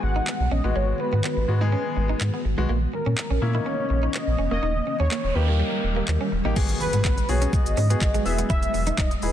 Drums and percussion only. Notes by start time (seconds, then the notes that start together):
0.27 clap
1.24 clap
2.21 clap
3.18 clap
4.14 clap
5.11 clap
6.08 clap
6.56 kick, crash, shaker
6.69 closed hi-hat, shaker
6.81 open hi-hat, shaker
6.93 closed hi-hat, shaker
7.05 kick, clap, shaker
7.18 closed hi-hat, shaker
7.29 open hi-hat, shaker
7.42 closed hi-hat, shaker
7.53 kick, shaker
7.66 closed hi-hat, shaker
7.77 open hi-hat, shaker
7.90 closed hi-hat, shaker
8.01 kick, clap, shaker
8.14 closed hi-hat, shaker
8.26 open hi-hat, shaker
8.38 closed hi-hat, shaker
8.50 kick, shaker
8.63 closed hi-hat, shaker
8.74 open hi-hat, shaker
8.87 closed hi-hat, shaker
8.98 kick, clap, shaker
9.11 closed hi-hat, shaker
9.22 open hi-hat, shaker